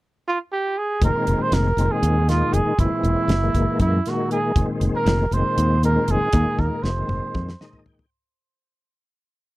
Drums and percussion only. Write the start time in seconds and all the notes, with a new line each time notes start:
1.02 kick, closed hi-hat
1.27 closed hi-hat
1.52 snare, closed hi-hat
1.78 closed hi-hat
2.03 closed hi-hat
2.29 snare, closed hi-hat
2.54 closed hi-hat
2.79 kick, closed hi-hat
3.05 closed hi-hat
3.29 snare, closed hi-hat
3.55 kick, closed hi-hat
3.80 kick, closed hi-hat
4.06 snare, closed hi-hat
4.31 closed hi-hat
4.56 kick, closed hi-hat
4.81 closed hi-hat
5.07 snare, closed hi-hat
5.32 closed hi-hat
5.58 closed hi-hat
5.83 closed hi-hat
6.08 closed hi-hat
6.33 kick, closed hi-hat
6.59 kick
6.85 snare
7.09 mid tom
7.35 kick, mid tom
7.49 snare
7.61 snare
7.73 floor tom
7.86 floor tom
7.99 floor tom